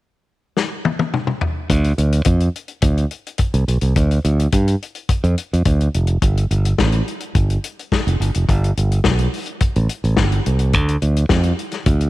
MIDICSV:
0, 0, Header, 1, 3, 480
1, 0, Start_track
1, 0, Tempo, 564972
1, 1439, Time_signature, 4, 2, 24, 8
1, 10277, End_track
2, 0, Start_track
2, 0, Title_t, "Fingered electric bass"
2, 0, Program_c, 0, 33
2, 1444, Note_on_c, 0, 38, 98
2, 1625, Note_off_c, 0, 38, 0
2, 1683, Note_on_c, 0, 38, 89
2, 1865, Note_off_c, 0, 38, 0
2, 1920, Note_on_c, 0, 41, 86
2, 2103, Note_off_c, 0, 41, 0
2, 2400, Note_on_c, 0, 38, 86
2, 2583, Note_off_c, 0, 38, 0
2, 3006, Note_on_c, 0, 36, 84
2, 3096, Note_off_c, 0, 36, 0
2, 3126, Note_on_c, 0, 35, 70
2, 3216, Note_off_c, 0, 35, 0
2, 3244, Note_on_c, 0, 36, 72
2, 3335, Note_off_c, 0, 36, 0
2, 3368, Note_on_c, 0, 38, 98
2, 3549, Note_off_c, 0, 38, 0
2, 3608, Note_on_c, 0, 38, 94
2, 3789, Note_off_c, 0, 38, 0
2, 3849, Note_on_c, 0, 43, 76
2, 4030, Note_off_c, 0, 43, 0
2, 4449, Note_on_c, 0, 41, 89
2, 4538, Note_off_c, 0, 41, 0
2, 4702, Note_on_c, 0, 41, 73
2, 4786, Note_off_c, 0, 41, 0
2, 4808, Note_on_c, 0, 38, 85
2, 4990, Note_off_c, 0, 38, 0
2, 5053, Note_on_c, 0, 29, 76
2, 5233, Note_off_c, 0, 29, 0
2, 5287, Note_on_c, 0, 31, 108
2, 5469, Note_off_c, 0, 31, 0
2, 5528, Note_on_c, 0, 31, 91
2, 5710, Note_off_c, 0, 31, 0
2, 5769, Note_on_c, 0, 33, 90
2, 5950, Note_off_c, 0, 33, 0
2, 6243, Note_on_c, 0, 31, 85
2, 6427, Note_off_c, 0, 31, 0
2, 6855, Note_on_c, 0, 29, 81
2, 6943, Note_off_c, 0, 29, 0
2, 6967, Note_on_c, 0, 31, 78
2, 7058, Note_off_c, 0, 31, 0
2, 7100, Note_on_c, 0, 29, 70
2, 7186, Note_off_c, 0, 29, 0
2, 7213, Note_on_c, 0, 31, 98
2, 7393, Note_off_c, 0, 31, 0
2, 7455, Note_on_c, 0, 31, 93
2, 7634, Note_off_c, 0, 31, 0
2, 7690, Note_on_c, 0, 35, 74
2, 7871, Note_off_c, 0, 35, 0
2, 8295, Note_on_c, 0, 33, 85
2, 8383, Note_off_c, 0, 33, 0
2, 8529, Note_on_c, 0, 33, 81
2, 8643, Note_on_c, 0, 31, 81
2, 8656, Note_off_c, 0, 33, 0
2, 8826, Note_off_c, 0, 31, 0
2, 8892, Note_on_c, 0, 36, 77
2, 9125, Note_off_c, 0, 36, 0
2, 9125, Note_on_c, 0, 38, 101
2, 9307, Note_off_c, 0, 38, 0
2, 9364, Note_on_c, 0, 38, 85
2, 9546, Note_off_c, 0, 38, 0
2, 9597, Note_on_c, 0, 41, 89
2, 9782, Note_off_c, 0, 41, 0
2, 10078, Note_on_c, 0, 38, 91
2, 10262, Note_off_c, 0, 38, 0
2, 10277, End_track
3, 0, Start_track
3, 0, Title_t, "Drums"
3, 481, Note_on_c, 9, 38, 65
3, 566, Note_off_c, 9, 38, 0
3, 723, Note_on_c, 9, 48, 80
3, 808, Note_off_c, 9, 48, 0
3, 844, Note_on_c, 9, 48, 74
3, 929, Note_off_c, 9, 48, 0
3, 966, Note_on_c, 9, 47, 79
3, 1051, Note_off_c, 9, 47, 0
3, 1081, Note_on_c, 9, 47, 77
3, 1166, Note_off_c, 9, 47, 0
3, 1200, Note_on_c, 9, 43, 91
3, 1285, Note_off_c, 9, 43, 0
3, 1442, Note_on_c, 9, 36, 96
3, 1443, Note_on_c, 9, 42, 69
3, 1527, Note_off_c, 9, 36, 0
3, 1528, Note_off_c, 9, 42, 0
3, 1566, Note_on_c, 9, 42, 39
3, 1651, Note_off_c, 9, 42, 0
3, 1684, Note_on_c, 9, 42, 56
3, 1769, Note_off_c, 9, 42, 0
3, 1805, Note_on_c, 9, 42, 52
3, 1890, Note_off_c, 9, 42, 0
3, 1908, Note_on_c, 9, 42, 87
3, 1920, Note_on_c, 9, 36, 104
3, 1993, Note_off_c, 9, 42, 0
3, 2005, Note_off_c, 9, 36, 0
3, 2042, Note_on_c, 9, 42, 42
3, 2127, Note_off_c, 9, 42, 0
3, 2171, Note_on_c, 9, 42, 47
3, 2256, Note_off_c, 9, 42, 0
3, 2276, Note_on_c, 9, 42, 37
3, 2361, Note_off_c, 9, 42, 0
3, 2393, Note_on_c, 9, 42, 82
3, 2400, Note_on_c, 9, 36, 113
3, 2478, Note_off_c, 9, 42, 0
3, 2485, Note_off_c, 9, 36, 0
3, 2527, Note_on_c, 9, 42, 43
3, 2612, Note_off_c, 9, 42, 0
3, 2640, Note_on_c, 9, 42, 61
3, 2725, Note_off_c, 9, 42, 0
3, 2774, Note_on_c, 9, 42, 41
3, 2859, Note_off_c, 9, 42, 0
3, 2871, Note_on_c, 9, 42, 72
3, 2882, Note_on_c, 9, 36, 90
3, 2956, Note_off_c, 9, 42, 0
3, 2967, Note_off_c, 9, 36, 0
3, 3005, Note_on_c, 9, 42, 43
3, 3090, Note_off_c, 9, 42, 0
3, 3128, Note_on_c, 9, 42, 58
3, 3213, Note_off_c, 9, 42, 0
3, 3238, Note_on_c, 9, 42, 46
3, 3323, Note_off_c, 9, 42, 0
3, 3363, Note_on_c, 9, 42, 70
3, 3365, Note_on_c, 9, 36, 99
3, 3448, Note_off_c, 9, 42, 0
3, 3450, Note_off_c, 9, 36, 0
3, 3491, Note_on_c, 9, 42, 39
3, 3576, Note_off_c, 9, 42, 0
3, 3607, Note_on_c, 9, 42, 55
3, 3692, Note_off_c, 9, 42, 0
3, 3734, Note_on_c, 9, 42, 54
3, 3819, Note_off_c, 9, 42, 0
3, 3842, Note_on_c, 9, 42, 79
3, 3847, Note_on_c, 9, 36, 96
3, 3927, Note_off_c, 9, 42, 0
3, 3932, Note_off_c, 9, 36, 0
3, 3973, Note_on_c, 9, 42, 47
3, 4058, Note_off_c, 9, 42, 0
3, 4099, Note_on_c, 9, 42, 44
3, 4184, Note_off_c, 9, 42, 0
3, 4204, Note_on_c, 9, 42, 41
3, 4289, Note_off_c, 9, 42, 0
3, 4323, Note_on_c, 9, 42, 77
3, 4325, Note_on_c, 9, 36, 97
3, 4408, Note_off_c, 9, 42, 0
3, 4410, Note_off_c, 9, 36, 0
3, 4453, Note_on_c, 9, 42, 41
3, 4538, Note_off_c, 9, 42, 0
3, 4568, Note_on_c, 9, 42, 61
3, 4653, Note_off_c, 9, 42, 0
3, 4703, Note_on_c, 9, 42, 40
3, 4787, Note_off_c, 9, 42, 0
3, 4802, Note_on_c, 9, 42, 70
3, 4805, Note_on_c, 9, 36, 96
3, 4887, Note_off_c, 9, 42, 0
3, 4890, Note_off_c, 9, 36, 0
3, 4932, Note_on_c, 9, 42, 38
3, 5017, Note_off_c, 9, 42, 0
3, 5049, Note_on_c, 9, 42, 60
3, 5134, Note_off_c, 9, 42, 0
3, 5156, Note_on_c, 9, 42, 45
3, 5241, Note_off_c, 9, 42, 0
3, 5284, Note_on_c, 9, 42, 79
3, 5285, Note_on_c, 9, 36, 104
3, 5369, Note_off_c, 9, 42, 0
3, 5370, Note_off_c, 9, 36, 0
3, 5415, Note_on_c, 9, 42, 42
3, 5500, Note_off_c, 9, 42, 0
3, 5530, Note_on_c, 9, 42, 54
3, 5615, Note_off_c, 9, 42, 0
3, 5650, Note_on_c, 9, 42, 54
3, 5735, Note_off_c, 9, 42, 0
3, 5764, Note_on_c, 9, 38, 95
3, 5766, Note_on_c, 9, 36, 95
3, 5849, Note_off_c, 9, 38, 0
3, 5851, Note_off_c, 9, 36, 0
3, 5881, Note_on_c, 9, 42, 43
3, 5966, Note_off_c, 9, 42, 0
3, 6012, Note_on_c, 9, 42, 42
3, 6097, Note_off_c, 9, 42, 0
3, 6121, Note_on_c, 9, 42, 43
3, 6205, Note_off_c, 9, 42, 0
3, 6243, Note_on_c, 9, 42, 72
3, 6245, Note_on_c, 9, 36, 109
3, 6328, Note_off_c, 9, 42, 0
3, 6330, Note_off_c, 9, 36, 0
3, 6371, Note_on_c, 9, 42, 45
3, 6456, Note_off_c, 9, 42, 0
3, 6490, Note_on_c, 9, 42, 65
3, 6575, Note_off_c, 9, 42, 0
3, 6620, Note_on_c, 9, 42, 41
3, 6705, Note_off_c, 9, 42, 0
3, 6728, Note_on_c, 9, 36, 94
3, 6732, Note_on_c, 9, 38, 93
3, 6813, Note_off_c, 9, 36, 0
3, 6817, Note_off_c, 9, 38, 0
3, 6861, Note_on_c, 9, 42, 44
3, 6946, Note_off_c, 9, 42, 0
3, 6980, Note_on_c, 9, 42, 60
3, 7065, Note_off_c, 9, 42, 0
3, 7089, Note_on_c, 9, 42, 49
3, 7174, Note_off_c, 9, 42, 0
3, 7210, Note_on_c, 9, 36, 100
3, 7212, Note_on_c, 9, 42, 67
3, 7295, Note_off_c, 9, 36, 0
3, 7297, Note_off_c, 9, 42, 0
3, 7341, Note_on_c, 9, 42, 42
3, 7426, Note_off_c, 9, 42, 0
3, 7454, Note_on_c, 9, 42, 58
3, 7539, Note_off_c, 9, 42, 0
3, 7575, Note_on_c, 9, 42, 49
3, 7660, Note_off_c, 9, 42, 0
3, 7680, Note_on_c, 9, 38, 97
3, 7687, Note_on_c, 9, 36, 102
3, 7765, Note_off_c, 9, 38, 0
3, 7772, Note_off_c, 9, 36, 0
3, 7805, Note_on_c, 9, 42, 47
3, 7890, Note_off_c, 9, 42, 0
3, 7931, Note_on_c, 9, 46, 42
3, 8016, Note_off_c, 9, 46, 0
3, 8034, Note_on_c, 9, 42, 39
3, 8119, Note_off_c, 9, 42, 0
3, 8160, Note_on_c, 9, 42, 80
3, 8165, Note_on_c, 9, 36, 104
3, 8245, Note_off_c, 9, 42, 0
3, 8250, Note_off_c, 9, 36, 0
3, 8289, Note_on_c, 9, 42, 41
3, 8374, Note_off_c, 9, 42, 0
3, 8404, Note_on_c, 9, 42, 68
3, 8489, Note_off_c, 9, 42, 0
3, 8534, Note_on_c, 9, 42, 36
3, 8619, Note_off_c, 9, 42, 0
3, 8638, Note_on_c, 9, 38, 106
3, 8642, Note_on_c, 9, 36, 95
3, 8722, Note_off_c, 9, 38, 0
3, 8727, Note_off_c, 9, 36, 0
3, 8766, Note_on_c, 9, 42, 39
3, 8851, Note_off_c, 9, 42, 0
3, 8886, Note_on_c, 9, 42, 58
3, 8971, Note_off_c, 9, 42, 0
3, 8995, Note_on_c, 9, 42, 46
3, 9080, Note_off_c, 9, 42, 0
3, 9118, Note_on_c, 9, 42, 69
3, 9123, Note_on_c, 9, 36, 103
3, 9203, Note_off_c, 9, 42, 0
3, 9208, Note_off_c, 9, 36, 0
3, 9248, Note_on_c, 9, 42, 40
3, 9333, Note_off_c, 9, 42, 0
3, 9361, Note_on_c, 9, 42, 55
3, 9446, Note_off_c, 9, 42, 0
3, 9485, Note_on_c, 9, 42, 47
3, 9570, Note_off_c, 9, 42, 0
3, 9594, Note_on_c, 9, 38, 96
3, 9600, Note_on_c, 9, 36, 105
3, 9679, Note_off_c, 9, 38, 0
3, 9685, Note_off_c, 9, 36, 0
3, 9715, Note_on_c, 9, 42, 45
3, 9800, Note_off_c, 9, 42, 0
3, 9846, Note_on_c, 9, 42, 45
3, 9930, Note_off_c, 9, 42, 0
3, 9953, Note_on_c, 9, 42, 42
3, 9961, Note_on_c, 9, 38, 35
3, 10038, Note_off_c, 9, 42, 0
3, 10046, Note_off_c, 9, 38, 0
3, 10075, Note_on_c, 9, 42, 83
3, 10079, Note_on_c, 9, 36, 110
3, 10160, Note_off_c, 9, 42, 0
3, 10164, Note_off_c, 9, 36, 0
3, 10200, Note_on_c, 9, 42, 45
3, 10277, Note_off_c, 9, 42, 0
3, 10277, End_track
0, 0, End_of_file